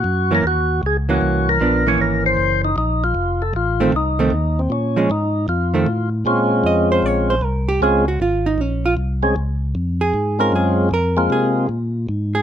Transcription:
X:1
M:4/4
L:1/8
Q:"Swing" 1/4=154
K:Bbm
V:1 name="Tonewheel organ"
G B G2 A G2 B- | B d B c2 E E F- | F =A F2 E3 C | D2 E2 F3 z |
[A,CDF]4- [A,CDF] z3 | [A,CDF] z6 [A,CDA] | z4 z [A,CDF]3 | z [A,B,CF]3 z4 |]
V:2 name="Hollow-body jazz guitar"
z [_F,B,D] z3 [F,B,D]3 | [F,_C=D] [_F,B,_D]4 z3 | z3 [E,=A,C] z [E,A,C] z2 | z [F,A,D] z3 [E,=A,C] z2 |
z2 e c d c B =G | A G F E D F z2 | z3 A2 B A2 | B2 A2 z3 A |]
V:3 name="Tonewheel organ" clef=bass
G,,2 E,,2 D,,2 C,,2 | B,,,2 A,,,2 G,,,2 B,,,2 | F,,,2 =A,,,2 C,,2 E,,2 | B,,2 A,,2 F,,2 =A,,2 |
B,,2 F,,2 B,,,2 C,,2 | D,,2 A,,,2 B,,,2 C,,2 | D,,2 F,,2 A,,2 G,,2 | F,,2 C,2 B,,2 A,,2 |]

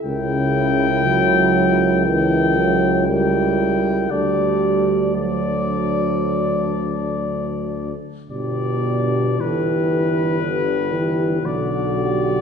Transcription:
X:1
M:4/4
L:1/8
Q:1/4=58
K:G
V:1 name="Cornet"
g4 g2 g2 | d2 d4- d z | d2 B4 d2 |]
V:2 name="French horn section"
^A4 A2 A2 | A2 A4- A z | G2 A B B2 A G |]
V:3 name="Euphonium"
E4 E2 E2 | D2 D4- D z | D2 G2 G2 F2 |]
V:4 name="Trombone" clef=bass
^C,2 F,2 E, F, G,2 | G,2 F,4- F, z | B,,2 E,2 D, E, D,2 |]
V:5 name="Tuba" clef=bass
^C,,8 | D,,6- D,, z | G,,,6 B,,,2 |]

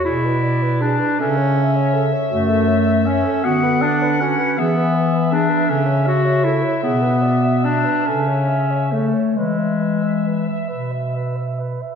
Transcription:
X:1
M:6/8
L:1/16
Q:3/8=53
K:A
V:1 name="Soprano saxophone"
d6 e6- | [K:Emix] e6 f6 | e12- | e8- e2 z2 |
e8- e2 z2 |]
V:2 name="Alto saxophone"
G B d B G B A c e c A c | [K:Emix] F A c e c A F B d B F B | G B e B G B A c e c A c | G B d e d B A c e c A c |
B e B e B e B e B e B e |]
V:3 name="Clarinet"
E4 D2 C4 z2 | [K:Emix] A,4 C2 B,2 D2 C2 | B,4 D2 C2 F2 E2 | B,4 D2 C4 A,2 |
G,6 z6 |]
V:4 name="Bass clarinet" clef=bass
B,,6 C,6 | [K:Emix] F,,6 D,6 | E,6 C,6 | B,,6 C,6 |
E,6 B,,6 |]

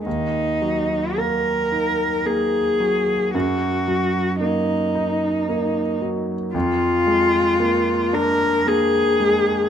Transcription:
X:1
M:3/4
L:1/8
Q:1/4=56
K:Ebm
V:1 name="Cello"
E2 B2 A2 | G2 E3 z | F3 B A2 |]
V:2 name="Grand piano"
E,, G, B, E B, G, | G,, G, B, E B, G, | F,, A, B, =D B, A, |]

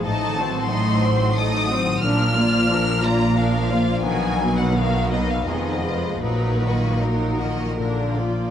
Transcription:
X:1
M:3/4
L:1/16
Q:1/4=86
K:Bbphr
V:1 name="Violin section"
=a4 =c'4 e'4 | f'6 b2 f4 | a3 ^f =f2 ^d f e4 | c4 B6 z2 |]
V:2 name="Violin section"
[=Ae]2 [^F=c]2 [Ae]2 [Fc]2 [Ae]2 [Fc]2 | [=DB]2 [F=d]2 [DB]2 [Fd]2 [DB]2 [Fd]2 | [^F^A]2 [^D=B]2 [FA]2 [DB]2 [E_A]2 [=Fc]2 | [EB]2 [Ge]2 [EB]2 [Ge]2 [=DB]2 [F=d]2 |]
V:3 name="Harp"
(3=A,,2 E,2 ^F,2 (3E2 =c2 ^F2 (3E2 F,2 E,2 | (3B,,2 B,2 F,2 (3=D2 B2 F2 (3D2 F,2 B,2 | (3=B,,2 ^F,2 =B,2 (3^D2 ^A2 =B2 (3=F,,2 C2 [F_A]2 | (3B,,2 G,2 B,2 (3E2 G2 B2 (3B,,2 B,2 [=DF]2 |]
V:4 name="Viola section"
[=A,E]2 =C2 [A,E]2 C2 [A,E]2 C2 | [F,=D]2 [B,F]2 [F,D]2 [B,F]2 [F,D]2 [B,F]2 | [^D,=B,]2 [^F,^A,]2 [D,B,]2 [F,A,]2 [E,C]2 [=F,_A,]2 | [G,E]2 [E,B,]2 [G,E]2 [E,B,]2 [=D,=D]2 [F,B,]2 |]
V:5 name="Cello section" clef=bass
=A,,12 | B,,12 | =B,,8 F,,4 | B,,8- B,,3 z |]
V:6 name="Double bass section" clef=bass
=A,,,12 | B,,,12 | =B,,,8 F,,,4 | B,,,8- B,,,3 z |]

